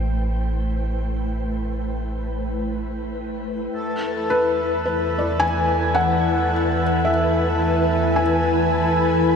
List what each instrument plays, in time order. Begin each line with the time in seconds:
Already playing: analog synth bass A1, ambient pad A3 E4 B4 C5 G5
3.73 analog synth bass E2, ambient pad E3, harmonium A3 A4
4.30 felt piano B4
4.85 felt piano B4
5.18 felt piano D5
5.40 felt piano G#5
5.95 felt piano F#5
6.13 ambient pad G#5
7.05 felt piano E5
7.74 ambient pad B5
8.16 felt piano G#5